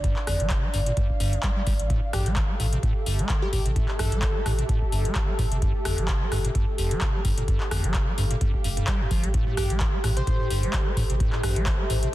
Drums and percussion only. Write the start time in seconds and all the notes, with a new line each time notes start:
0.04 kick, closed hi-hat
0.16 clap
0.27 cross-stick, open hi-hat
0.40 closed hi-hat
0.50 kick, clap, closed hi-hat
0.74 open hi-hat
0.86 closed hi-hat
0.97 kick, closed hi-hat
1.10 kick
1.20 open hi-hat
1.33 closed hi-hat
1.43 kick, clap, closed hi-hat
1.67 kick, open hi-hat
1.79 closed hi-hat
1.90 kick, closed hi-hat
2.13 cross-stick, open hi-hat
2.26 closed hi-hat
2.36 kick, clap, closed hi-hat
2.60 open hi-hat
2.73 closed hi-hat
2.83 kick, closed hi-hat
3.06 open hi-hat
3.19 closed hi-hat
3.29 kick, clap, closed hi-hat
3.53 kick, open hi-hat
3.66 closed hi-hat
3.76 kick, closed hi-hat
3.88 clap
3.99 cross-stick, open hi-hat
4.12 closed hi-hat
4.22 kick, clap, closed hi-hat
4.46 cross-stick, open hi-hat
4.59 closed hi-hat
4.69 kick, closed hi-hat
4.82 kick
4.92 open hi-hat
5.05 closed hi-hat
5.15 kick, clap, closed hi-hat
5.39 kick, open hi-hat
5.52 closed hi-hat
5.62 kick, closed hi-hat
5.85 cross-stick, open hi-hat
5.98 closed hi-hat
6.08 kick, clap, closed hi-hat
6.32 cross-stick, open hi-hat
6.45 closed hi-hat
6.55 kick, closed hi-hat
6.78 open hi-hat
6.91 closed hi-hat
7.01 kick, clap, closed hi-hat
7.25 kick, open hi-hat
7.38 closed hi-hat
7.48 kick, closed hi-hat
7.60 clap
7.71 cross-stick, open hi-hat
7.84 closed hi-hat
7.94 kick, clap, closed hi-hat
8.18 open hi-hat
8.31 closed hi-hat
8.41 kick, closed hi-hat
8.54 kick
8.64 open hi-hat
8.77 closed hi-hat
8.87 kick, clap, closed hi-hat
9.11 kick, open hi-hat
9.24 closed hi-hat
9.34 kick, closed hi-hat
9.57 cross-stick, open hi-hat
9.70 closed hi-hat
9.80 kick, clap, closed hi-hat
10.04 cross-stick, open hi-hat
10.17 closed hi-hat
10.27 kick, closed hi-hat
10.50 open hi-hat
10.63 closed hi-hat
10.73 kick, clap, closed hi-hat
10.97 kick, open hi-hat
11.10 closed hi-hat
11.20 kick, closed hi-hat
11.32 clap
11.43 cross-stick, open hi-hat
11.56 closed hi-hat
11.66 kick, clap, closed hi-hat
11.90 open hi-hat
12.03 closed hi-hat